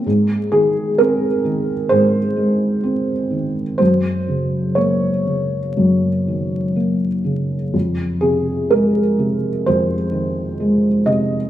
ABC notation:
X:1
M:4/4
L:1/8
Q:1/4=63
K:Ebdor
V:1 name="Felt piano"
z A B2 c4 | c2 d4 z2 | z A B2 c3 e |]
V:2 name="Felt piano" clef=bass
A,, E, C E, A,, A, C E, | G,, D, B, D, G,, E, B, D, | F,, C, A, C, F,, E, A, C, |]